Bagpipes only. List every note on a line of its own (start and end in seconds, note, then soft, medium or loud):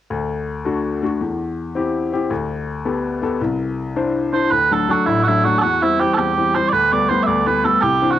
4.33 4.51 C5 medium
4.51 4.73 B4 loud
4.73 4.91 A4 medium
4.91 5.06 F#4 medium
5.06 5.23 E4 medium
5.23 5.28 F#4 medium
5.28 5.44 E4 medium
5.44 5.58 F#4 medium
5.58 5.82 F#4 medium
5.58 5.62 A4 medium
5.82 6.00 E4 medium
6.00 6.14 G4 medium
6.14 6.55 G4 medium
6.14 6.17 A4 medium
6.55 6.68 C5 medium
6.68 6.73 D5 loud
6.73 6.93 B4 loud
6.93 7.09 D5 medium
7.09 7.23 C5 medium
7.23 7.47 D5 medium
7.23 7.26 E5 medium
7.47 7.65 B4 medium
7.65 7.81 A4 medium
7.81 8.11 G4 medium
8.11 8.19 F#4 medium